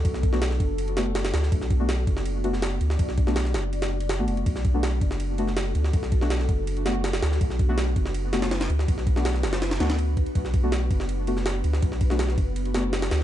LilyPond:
<<
  \new Staff \with { instrumentName = "Ambient pad" } { \time 4/4 \key b \minor \tempo 4 = 163 << { a'1 | d''1~ | d''1 | a'1~ |
a'1 | b'1~ | b'1 | b'1~ |
b'1 | } \\ { <b d' fis'>1~ | <b d' fis'>1~ | <b d' fis'>1~ | <b d' fis'>1~ |
<b d' fis'>1~ | <b d' fis'>1~ | <b d' fis'>1~ | <b d' fis'>1~ |
<b d' fis'>1 | } >> }
  \new Staff \with { instrumentName = "Synth stab" } { \time 4/4 \key b \minor r8. <a b d' fis'>16 r4. <a b d' fis'>16 r4 r16 | r8. <a b d' fis'>16 r4. <a b d' fis'>16 r4 r16 | r8. <a b d' fis'>16 r2 r16 <a b d' fis'>8.~ | <a b d' fis'>8. <a b d' fis'>16 r4. <a b d' fis'>16 r4 r16 |
r8. <a b d' fis'>16 r4. <a b d' fis'>16 r4 r16 | r8. <a b d' fis'>16 r4. <a b d' fis'>16 r4 r16 | r8. <a b d' fis'>16 r4. <a b d' fis'>16 r4 r16 | r8. <a b d' fis'>16 r4. <a b d' fis'>16 r4 r16 |
r8. <a b d' fis'>16 r4. <a b d' fis'>16 r4 r16 | }
  \new Staff \with { instrumentName = "Sub bass" } { \clef bass \time 4/4 \key b \minor b,,4. fis,,2 d,8 | b,,4. fis,,2 d,8 | b,,4. fis,,4.~ fis,,16 a,,16 fis,,8 | b,,4. fis,,2 d,8 |
b,,4. fis,,2 d,8 | b,,4. fis,,2 d,8 | b,,4. fis,,4 d,4~ d,16 r16 | b,,4. fis,,2 d,8 |
b,,4. fis,,2 d,8 | }
  \new DrumStaff \with { instrumentName = "Drums" } \drummode { \time 4/4 <bd cymr>16 sn16 <bd cymr>16 sn16 <cymr sn>16 sn16 <bd cymr>8 cymr16 cymr16 <cymr sn>8 <cymr sn>16 <cymr sn>16 <cymr sn>16 sn16 | <bd cymr>16 sn16 <bd cymr>8 <cymr sn>8 <bd cymr>16 sn16 cymr8 cymr16 sn16 <cymr sn>8 cymr16 sn16 | <bd cymr>16 sn16 <bd cymr>16 sn16 <cymr sn>16 sn16 <cymr sn>8 cymr16 <cymr sn>8 cymr16 <cymr sn>8 cymr16 cymr16 | <bd cymr>16 sn16 <bd cymr>8 <cymr sn>8 <bd cymr>16 sn16 cymr8 cymr16 sn16 <cymr sn>8 cymr16 sn16 |
<bd cymr>16 sn16 <bd cymr>16 sn16 <cymr sn>16 sn16 <bd cymr>8 cymr16 cymr16 <cymr sn>8 <cymr sn>16 <cymr sn>16 <cymr sn>16 sn16 | <bd cymr>16 sn16 <bd cymr>8 <cymr sn>8 <bd cymr>16 sn16 cymr8 <cymr sn>16 <cymr sn>16 <cymr sn>16 <cymr sn>16 cymr16 sn16 | <bd cymr>16 sn16 <bd cymr>16 sn16 <cymr sn>16 sn16 <cymr sn>16 <cymr sn>16 <cymr sn>16 <cymr sn>16 <cymr sn>16 <cymr sn>16 cymr8 <bd cymr>16 cymr16 | <bd cymr>16 sn16 <bd cymr>8 <cymr sn>8 <bd cymr>16 sn16 cymr8 cymr16 sn16 <cymr sn>8 cymr16 sn16 |
<bd cymr>16 sn16 <bd cymr>16 sn16 <cymr sn>16 sn16 <bd cymr>8 cymr16 cymr16 <cymr sn>8 <cymr sn>16 <cymr sn>16 <cymr sn>8 | }
>>